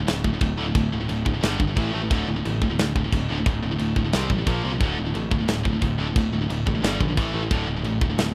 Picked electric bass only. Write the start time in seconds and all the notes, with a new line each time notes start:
0.09 D1
0.25 D1
0.41 D1
0.58 D1
0.75 D1
0.93 D1
1.09 D1
1.26 D1
1.43 G1
1.60 G1
1.76 A1
1.95 A1
2.10 D1
2.28 D1
2.46 A1
2.62 D1
2.79 D1
2.95 D1
3.12 D1
3.30 D1
3.46 D1
3.63 D1
3.80 D1
3.96 D1
4.14 C2
4.30 A1
4.46 A#1
4.65 C2
4.81 D1
4.99 D1
5.15 A1
5.32 D1
5.49 D1
5.65 D1
5.82 D1
5.99 D1
6.16 D1
6.33 D1
6.50 D1
6.67 A1
6.83 G1
7.00 A#1
7.18 A1
7.34 A1
7.51 D1
7.67 D1
7.83 A1
8.01 D1
8.18 D1